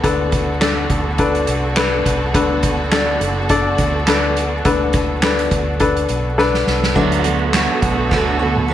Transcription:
0.00 0.86 D2 loud
0.00 6.92 D3 medium
0.00 0.86 D3 medium
0.00 6.92 B3 medium
0.00 0.03 D4 medium
0.00 0.49 D4 medium
0.00 6.92 F#4 medium
0.00 0.04 A4 medium
0.00 6.92 A4 medium
0.00 0.50 A4 medium
0.00 0.04 B4 medium
0.00 kick medium
0.00 closed hi-hat medium
0.04 0.50 B4 medium
0.32 kick medium
0.32 closed hi-hat medium
0.61 1.07 D4 medium
0.61 1.07 A4 medium
0.61 1.07 D5 medium
0.61 snare loud
0.61 clap medium
0.61 closed hi-hat medium
0.90 1.44 D2 medium
0.90 kick medium
0.90 closed hi-hat medium
1.18 1.65 D4 medium
1.18 1.65 A4 medium
1.18 1.65 B4 medium
1.18 kick medium
1.18 closed hi-hat medium
1.35 closed hi-hat soft
1.47 2.02 C2 medium
1.47 closed hi-hat medium
1.76 2.22 D4 medium
1.76 2.23 A4 medium
1.76 2.23 B4 medium
1.76 snare loud
1.76 clap loud
1.76 closed hi-hat medium
2.05 2.32 C2 medium
2.05 kick medium
2.05 closed hi-hat medium
2.34 3.17 D2 loud
2.34 3.17 D3 medium
2.34 2.80 D4 medium
2.34 2.80 A4 medium
2.34 2.81 B4 medium
2.34 kick loud
2.34 closed hi-hat medium
2.63 kick medium
2.63 closed hi-hat medium
2.92 3.38 D4 medium
2.92 3.38 A4 medium
2.92 3.38 D5 medium
2.92 snare loud
2.92 clap medium
2.92 closed hi-hat medium
3.21 3.75 F#1 loud
3.21 closed hi-hat medium
3.49 3.96 D4 medium
3.49 3.96 A4 medium
3.49 3.96 D5 medium
3.49 kick medium
3.49 closed hi-hat medium
3.78 4.61 D2 loud
3.78 kick medium
3.78 closed hi-hat medium
4.07 4.53 D4 medium
4.07 4.54 A4 medium
4.07 4.54 B4 medium
4.07 snare loud
4.07 clap medium
4.07 closed hi-hat loud
4.37 closed hi-hat medium
4.65 5.48 D2 loud
4.65 5.48 D3 medium
4.65 5.11 D4 medium
4.65 5.11 A4 medium
4.65 5.12 B4 medium
4.65 kick loud
4.65 closed hi-hat medium
4.93 kick medium
4.93 snare soft
4.93 closed hi-hat medium
5.22 5.69 D4 medium
5.22 5.69 A4 medium
5.22 5.69 B4 medium
5.22 snare loud
5.22 clap medium
5.22 closed hi-hat medium
5.39 closed hi-hat medium
5.51 6.05 D2 medium
5.51 kick medium
5.51 closed hi-hat medium
5.80 6.26 D4 medium
5.80 6.26 A4 medium
5.80 6.27 B4 medium
5.80 kick medium
5.80 closed hi-hat medium
5.97 closed hi-hat soft
6.09 6.63 B1 medium
6.09 closed hi-hat medium
6.38 6.84 D4 medium
6.38 6.84 A4 medium
6.38 6.84 B4 medium
6.38 snare medium
6.54 snare medium
6.67 6.94 C2 medium
6.67 snare medium
6.83 snare medium
6.94 7.66 D2 loud
6.94 8.74 D3 medium
6.94 7.25 D3 medium
6.94 7.35 F#3 soft
6.94 7.25 F#3 medium
6.94 7.36 A3 soft
6.94 7.25 A3 medium
6.94 8.74 B3 medium
6.94 7.24 B3 medium
6.94 7.36 D4 medium
6.94 8.74 F#4 medium
6.94 7.23 F#4 medium
6.94 8.74 A4 medium
6.94 kick medium
6.94 crash medium
7.12 closed hi-hat soft
7.24 7.53 A3 soft
7.24 7.54 B3 medium
7.24 7.53 F#4 medium
7.24 closed hi-hat medium
7.53 7.82 F#3 medium
7.53 7.83 A3 medium
7.53 7.82 B3 medium
7.53 7.81 F#4 medium
7.53 snare loud
7.53 clap medium
7.53 closed hi-hat medium
7.82 8.09 B1 medium
7.82 8.11 A3 soft
7.82 8.11 B3 medium
7.82 8.11 F#4 soft
7.82 kick medium
7.82 closed hi-hat medium
8.11 8.74 D2 loud
8.11 8.40 D3 medium
8.11 8.40 F#3 medium
8.11 8.41 A3 medium
8.11 8.40 B3 medium
8.11 8.38 F#4 medium
8.11 kick loud
8.11 snare medium
8.39 8.68 A3 soft
8.39 8.69 B3 soft
8.39 8.69 F#4 medium
8.56 high tom medium
8.68 8.74 F#3 medium
8.68 8.74 A3 medium
8.68 8.74 B3 medium

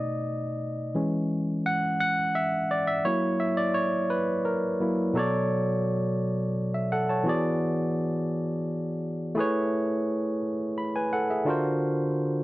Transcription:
0.00 0.96 B2 medium
0.00 0.96 A3 soft
0.00 0.97 D#4 medium
0.00 0.97 D5 medium
0.00 0.97 D#5 loud
0.95 3.01 E3 medium
0.95 3.02 G#3 medium
0.95 3.02 C#4 medium
1.66 1.98 F#5 medium
2.00 2.16 F#5 loud
2.35 2.68 E5 medium
2.71 2.87 D5 medium
2.87 3.06 E5 medium
3.05 4.06 F#3 medium
3.05 4.07 A#3 medium
3.05 4.07 E4 medium
3.05 3.41 C#5 medium
3.40 3.58 E5 medium
3.57 3.76 D5 medium
3.74 4.11 C#5 medium
4.10 4.43 B4 medium
4.45 4.61 A#4 medium
4.81 5.12 F#3 soft
4.81 5.13 A#3 soft
4.81 5.13 E4 medium
5.13 7.21 B2 medium
5.13 7.22 F#3 medium
5.13 6.53 A4 medium
5.13 6.54 C#5 medium
5.19 6.55 D5 medium
6.74 6.91 E5 medium
6.92 7.09 A4 medium
6.92 7.08 F#5 medium
7.09 7.43 C#5 soft
7.09 7.42 A5 medium
7.24 9.32 E3 medium
7.24 9.32 B3 medium
7.24 9.33 F#4 medium
7.28 9.34 G#4 medium
7.28 9.34 D5 medium
9.35 11.42 A3 medium
9.35 11.43 E4 medium
9.35 10.40 G#4 medium
9.39 10.41 B4 medium
9.39 10.42 C#5 medium
10.78 10.94 B5 medium
10.96 11.12 B4 medium
10.96 11.12 G#5 medium
11.13 11.30 A4 medium
11.13 11.29 F#5 medium
11.30 11.64 G#4 soft
11.30 11.63 E5 medium
11.45 12.44 D3 medium
11.45 12.44 D4 medium
11.45 12.44 F4 medium
11.45 12.44 F#4 medium
11.49 12.44 A#4 medium
11.49 12.44 C5 medium

